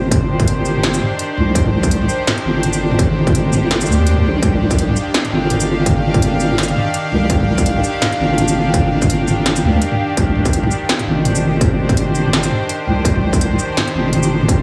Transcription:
Already playing: wobble bass G1, synth drone D#3 D4 G4 C5
0.11 kick, closed hi-hat, mid tom
0.40 kick, closed hi-hat, mid tom
0.48 closed hi-hat
0.65 shaker
0.76 mid tom
0.83 snare, closed hi-hat
0.94 closed hi-hat, shaker
1.01 mid tom
1.19 closed hi-hat
1.37 wobble bass C2, mid tom
1.55 wobble bass C2, kick, closed hi-hat
1.65 mid tom
1.83 kick, closed hi-hat, shaker
1.91 closed hi-hat
2.01 mid tom
2.09 shaker
2.27 snare, closed hi-hat, mid tom
2.38 closed hi-hat
2.45 wobble bass G1
2.63 closed hi-hat, mid tom
2.73 shaker
2.91 mid tom
2.99 kick, closed hi-hat
3.27 kick, closed hi-hat, mid tom
3.35 closed hi-hat
3.53 mid tom, shaker
3.71 snare, closed hi-hat
3.81 closed hi-hat, shaker
3.86 wobble bass D#2, mid tom, shaker
3.92 shaker
4.07 closed hi-hat
4.17 mid tom
4.24 wobble bass A#1
4.42 wobble bass C2, synth drone F5, kick, closed hi-hat
4.61 mid tom
4.71 kick, closed hi-hat, shaker
4.79 closed hi-hat
4.89 mid tom
4.96 shaker
5.14 snare, closed hi-hat
5.25 closed hi-hat, mid tom
5.32 wobble bass G1
5.50 closed hi-hat, mid tom
5.60 shaker
5.86 kick, closed hi-hat, mid tom
6.14 kick, closed hi-hat, mid tom
6.22 closed hi-hat
6.40 shaker
6.51 mid tom
6.58 snare, closed hi-hat
6.63 shaker
6.68 closed hi-hat
6.76 mid tom
6.94 closed hi-hat
7.12 wobble bass C2, mid tom
7.30 wobble bass C2, kick, closed hi-hat
7.40 mid tom
7.58 kick, closed hi-hat, shaker
7.66 closed hi-hat
7.76 mid tom
7.84 shaker
8.02 snare, closed hi-hat, mid tom
8.12 closed hi-hat
8.20 wobble bass G1
8.38 closed hi-hat, mid tom
8.48 shaker
8.74 kick, closed hi-hat
9.02 kick, closed hi-hat, mid tom, shaker
9.10 closed hi-hat
9.28 mid tom, shaker
9.46 snare, closed hi-hat
9.56 closed hi-hat, shaker
9.64 wobble bass D2, mid tom
9.82 closed hi-hat
9.92 mid tom
10.17 wobble bass C2, synth drone C5, kick, closed hi-hat
10.35 mid tom
10.45 kick, closed hi-hat, shaker
10.53 closed hi-hat
10.63 mid tom
10.71 shaker
10.89 snare, closed hi-hat
10.99 closed hi-hat, mid tom
11.07 wobble bass G1
11.25 closed hi-hat, mid tom
11.35 shaker
11.61 kick, closed hi-hat, mid tom
11.89 kick, closed hi-hat, mid tom
11.97 closed hi-hat
12.15 shaker
12.25 mid tom
12.33 snare, closed hi-hat
12.43 closed hi-hat, shaker
12.51 mid tom
12.69 closed hi-hat
12.87 wobble bass C2, mid tom
13.05 wobble bass C2, kick, closed hi-hat
13.16 mid tom
13.33 kick, closed hi-hat, shaker
13.41 closed hi-hat
13.51 mid tom
13.59 shaker
13.77 snare, closed hi-hat, mid tom
13.87 closed hi-hat
13.95 wobble bass G1
14.13 closed hi-hat, mid tom
14.23 shaker
14.41 mid tom
14.48 kick, closed hi-hat

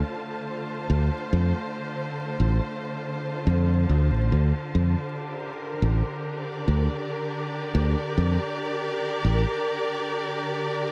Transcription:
Already playing: string section D3 A3 F4 C5 A5
0.90 fingered electric bass D2
1.33 fingered electric bass F2
2.40 fingered electric bass A1
3.47 fingered electric bass F2
3.89 fingered electric bass D2
4.11 fingered electric bass A1
4.32 fingered electric bass D2
4.75 fingered electric bass F2
5.03 string section D4
5.12 string section G4
5.31 string section A#4
5.82 fingered electric bass A1
6.36 string section D5
6.68 fingered electric bass D2
7.75 fingered electric bass D2
8.18 fingered electric bass F2
9.25 fingered electric bass A1

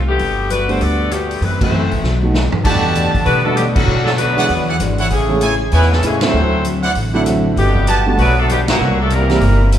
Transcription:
Already playing: upright bass C2
0.08 saxophone section D3 A3 B3 G4
0.19 upright bass G1, steel-string acoustic guitar G3 B3 F#4 A4, open hi-hat
0.50 steel-string acoustic guitar G3 B3 F#4 A4, saxophone section A3 D4 F#4 B4, closed hi-hat
0.68 grand piano D3 G3 A3 B3 F#4, saxophone section A3 D4 F#4 C5, open hi-hat
0.80 upright bass D2, steel-string acoustic guitar G3 B3 F#4 A4, saxophone section B3 F#4 A4 D5, open hi-hat
1.10 saxophone section D3 A3 B3 G4, steel-string acoustic guitar G3 B3 F#4 A4, cross-stick, closed hi-hat
1.31 open hi-hat
1.41 upright bass F#2, steel-string acoustic guitar F#2 E3 A3 C4, saxophone section G3 C4 E4 B4, open hi-hat
1.61 grand piano E3 F#3 A3 C4 F#4, trombone section E3 A3 C4, saxophone section A3 E4 F#4 C5, kick, crash
1.71 steel-string acoustic guitar F#2 E3 A3 C4
1.91 upright bass A#1, open hi-hat
2.02 upright bass B1, steel-string acoustic guitar B2 F#3 A3 D#4, snare
2.22 grand piano D#3 F#3 A3 B3 D#4
2.33 steel-string acoustic guitar B2 F#3 A3 D#4, snare
2.52 floor tom
2.64 upright bass E2, trombone section B2 D3 G3, saxophone section D3 B3 F#4 G4, steel-string acoustic guitar E3 A3 D4 G4, grand piano E3 G3 A3 D4 F#4, trumpet section A4 D5 F#5 A5, kick, crash
2.95 steel-string acoustic guitar E3 A3 D4 G4, closed hi-hat
3.14 muted upright bass stroke, kick, open hi-hat
3.24 upright bass B2, trombone section D3 G3 B3, steel-string acoustic guitar E3 A3 D4 G4, saxophone section G3 D4 F#4 B4, open hi-hat
3.44 trombone section B2 D3 A3, grand piano E3 G3 A3 D4 F#4, saxophone section G3 D4 F#4 A4
3.55 trombone section B2 D3 G3, saxophone section D3 F#3 B3 G4, steel-string acoustic guitar E3 A3 D4 G4, cross-stick, closed hi-hat
3.74 trombone section A2 D3 F#3, saxophone section D3 A3 C#4 F#4, kick, crash
3.87 upright bass B2, steel-string acoustic guitar B3 D4 A4 C#5
4.05 trombone section D3 F#3 A3, saxophone section F#3 C#4 D4 A4, snare
4.16 trombone section D3 F#3 B3, saxophone section A3 D4 F#4 B4, steel-string acoustic guitar B3 D4, closed hi-hat
4.21 steel-string acoustic guitar A4 C#5
4.36 grand piano E3 G#3 B3 D4 F#4, trumpet section E4 G#4 D5 F#5
4.49 upright bass E2, steel-string acoustic guitar E3 G#3 D4 F#4, open hi-hat
4.68 trumpet section E4 G#4 D5 F#5
4.80 upright bass G#1, steel-string acoustic guitar E3 G#3 D4 F#4, cross-stick, closed hi-hat
4.98 trumpet section E4 A4 C#5 F#5, open hi-hat
5.10 upright bass A1, steel-string acoustic guitar A2 G#3 C#4 E4, trombone section C#3 E3 G#4, saxophone section E3 A3 C#4 G#4, open hi-hat
5.29 grand piano E3 G#3 A3 C#4 G#4
5.41 steel-string acoustic guitar A2 G#3 C#4 E4, trumpet section E4 A4 C#5 G#5, closed hi-hat
5.72 upright bass E2, steel-string acoustic guitar A2 G#3 C#4 E4, saxophone section G#3 C#4 E4 B4, trombone section B3, trumpet section E4 A4 C#5 G#5, open hi-hat
5.82 snare
5.92 trombone section C#3 E3 A3, saxophone section E3 G#3 C#4 A4, snare
6.03 upright bass A2, steel-string acoustic guitar A2 G#3 C#4 E4, trombone section C#3 E3 G#3, saxophone section E3 A3 C#4 G#4, cross-stick, closed hi-hat
6.21 grand piano D3 F#3 A3 C4 E4, trombone section F#3 A3 C4, saxophone section A3 E4 F#4 C5, snare, ride
6.33 upright bass D2, steel-string acoustic guitar D3 F#3 C4 E4
6.64 steel-string acoustic guitar D3 F#3 C4 E4, closed hi-hat
6.83 trumpet section E4 C5 D5 F#5, open hi-hat
6.95 upright bass A1, steel-string acoustic guitar D3 F#3 C4 E4, open hi-hat
7.14 grand piano D3 F#3 A3 C4 E4, trumpet section E4 C5 D5 F#5
7.26 steel-string acoustic guitar D3 F#3 C4 E4, cross-stick, closed hi-hat
7.56 upright bass G1, trombone section B2 D3 G3, saxophone section D3 A3 B3 G4, steel-string acoustic guitar G3 B3 F#4 A4, open hi-hat
7.76 kick
7.87 steel-string acoustic guitar G3 B3 F#4 A4, trumpet section G4 B4 F#5 A5, closed hi-hat
8.06 grand piano D3 G3 A3 B3 F#4
8.18 upright bass B1, trombone section D3 F#3 B3, steel-string acoustic guitar G3 B3 F#4 A4, saxophone section A3 D4 F#4 B4, open hi-hat
8.39 trombone section D3 F#3 A3, saxophone section F#3 B3 D4 A4
8.49 trombone section B2 D3 G3, saxophone section D3 A3 B3 G4, steel-string acoustic guitar G3 B3 F#4 A4, cross-stick, closed hi-hat
8.68 trombone section G2 A#2 F#3, saxophone section E3 A#3 C4 F#4, trumpet section G4 C5 E5 A#5, snare, ride
8.79 upright bass C2, steel-string acoustic guitar C3 G3 A#3 E4
9.01 saxophone section F#3 A#3 D4 A4, trombone section A3
9.10 steel-string acoustic guitar C3 G3 A#3 E4, saxophone section G3 C4 E4 A#4, closed hi-hat
9.14 trombone section E3 G3 A#3
9.29 grand piano E3 G3 A#3 C4 G4, snare, open hi-hat
9.41 upright bass G1, steel-string acoustic guitar C3 G3 A#3 E4, open hi-hat
9.72 steel-string acoustic guitar C3 G3 A#3 E4, cross-stick, closed hi-hat

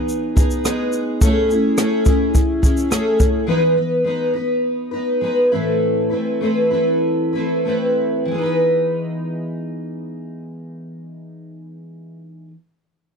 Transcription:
Already playing: twelve-string acoustic guitar B3 D#4 G#4
0.09 shaker
0.36 twelve-string acoustic guitar B3 D#4 G#4, kick, shaker
0.51 shaker
0.64 twelve-string acoustic guitar G#3 B3 D#4 G#4, cross-stick, shaker
0.92 shaker
1.21 twelve-string acoustic guitar A3 C#4 E4 G#4, kick, shaker
1.48 twelve-string acoustic guitar C#4 E4 G#4, shaker
1.77 twelve-string acoustic guitar A3 C#4 E4 G#4, cross-stick, shaker
2.05 twelve-string acoustic guitar C#4 E4 G#4, kick, shaker
2.35 kick, shaker
2.62 twelve-string acoustic guitar C#4 E4 G#4, kick, shaker
2.77 shaker
2.90 twelve-string acoustic guitar A3 C#4 E4 G#4, cross-stick, shaker
3.20 kick, shaker
3.47 twelve-string acoustic guitar E3 G#3 B3 D#4 B4
3.75 twelve-string acoustic guitar B3 D#4 B4
4.04 twelve-string acoustic guitar G#3 B3 D#4 B4
4.34 twelve-string acoustic guitar B3 D#4 B4
4.91 twelve-string acoustic guitar B3 D#4 B4
5.21 twelve-string acoustic guitar G#3 B3 D#4 B4
5.52 twelve-string acoustic guitar A2 E3 A3 C4 E4 B4
6.10 twelve-string acoustic guitar A3 C4 E4 B4
6.41 twelve-string acoustic guitar A3 C4 E4 B4
6.70 twelve-string acoustic guitar A3 C4 E4 B4
7.33 twelve-string acoustic guitar A3 C4 E4 B4
7.65 twelve-string acoustic guitar A3 C4 E4 B4
8.25 twelve-string acoustic guitar E3
8.31 twelve-string acoustic guitar G#3
8.35 twelve-string acoustic guitar B3 D#4
8.43 twelve-string acoustic guitar B4

